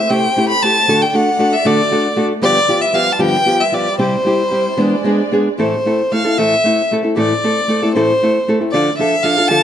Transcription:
Already playing: A3 G4 C5 E5
0.10 C3 A3 C4 E4 G4 G5
0.36 A3 C4 E4 G4
0.48 B5
0.62 A3 C4 E4 G4 A5
0.86 D3 A3 D4 F#4 A4 D5
1.01 G5
1.13 A3 D4 F#4 A4 F#5
1.39 A3 D4 F#4 A4
1.52 E5
1.65 D3 A3 D4 F#4 A4 D5
1.91 A3 D4 F#4 A4
2.16 A3 D4 F#4 A4
2.40 G2 D3 F3 G3 B3 F4 G4 B4 D5
2.68 F3 B3 F4 G4
2.81 E5
2.93 F3 B3 F4 G4 F5
3.12 A5
3.19 G2 D3 F3 B3 F4 G4 G5
3.46 F3 B3 F4 G4
3.60 E5
3.72 F3 B3 F4 G4 D5
3.98 C3 G3 C4 E4 G4 C5
4.25 G3 C4 E4 G4
4.51 G3 C4 E4 G4
4.77 E3 G#3 B3 D4 G#4 D5
5.04 G#3 B3 D4 G#4
5.32 G#3 B3 D4 G#4
5.58 A2 E3 A3 C4 E4 A4 C5
5.85 A3 C4 E4 A4
6.12 A3 C4 E4 A4 F5
6.25 A3 C4 E4 A4
6.37 A2 E3 A3 C4 E4 A4 E5
6.64 A3 C4 E4 A4
6.91 A3 C4 E4 A4
7.03 A3 C4 E4 A4
7.16 A2 E3 A3 C4 E4 A4 D5
7.44 A3 C4 E4 A4
7.68 A3 C4 E4 A4
7.82 A3 C4 E4 A4
7.94 A2 E3 A3 C4 E4 A4 C5
8.22 A3 C4 E4 A4
8.48 A3 C4 E4 A4
8.61 A3 C4 E4 A4
8.71 D3 F3 D4 F4 A4 D5
8.97 F3 D4 F4 A4 E5
9.22 F3 D4 F4 A4 F5
9.37 D4 F4 A4
9.48 D3 F3 D4 F4 A4 A5

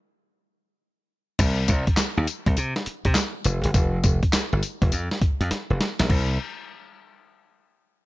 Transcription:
1.39 C2, kick, closed hi-hat, crash, tambourine
1.68 C2, kick, closed hi-hat, tambourine
1.87 kick, closed hi-hat
1.97 muted slap bass stroke, snare, clap, closed hi-hat, tambourine
2.17 D#2
2.27 closed hi-hat, tambourine
2.46 C2, kick, closed hi-hat
2.57 C3, closed hi-hat, tambourine
2.76 snare
2.86 muted slap bass stroke, closed hi-hat
3.05 C3, kick, closed hi-hat
3.15 snare, clap, closed hi-hat, tambourine
3.44 F1, closed hi-hat, tambourine
3.64 G1, closed hi-hat
3.74 F1, kick, closed hi-hat, tambourine
4.04 F1, kick, closed hi-hat, tambourine
4.23 kick, closed hi-hat
4.33 muted slap bass stroke, snare, clap, closed hi-hat, tambourine
4.53 G1
4.63 closed hi-hat, tambourine
4.82 F1, kick, closed hi-hat
4.92 F2, closed hi-hat, tambourine
5.11 snare
5.21 muted slap bass stroke, kick, closed hi-hat
5.41 F2, closed hi-hat
5.51 muted slap bass stroke, snare, closed hi-hat
5.70 F1
5.81 snare, closed hi-hat
5.99 A#1, snare, closed hi-hat
6.10 C2, kick, crash

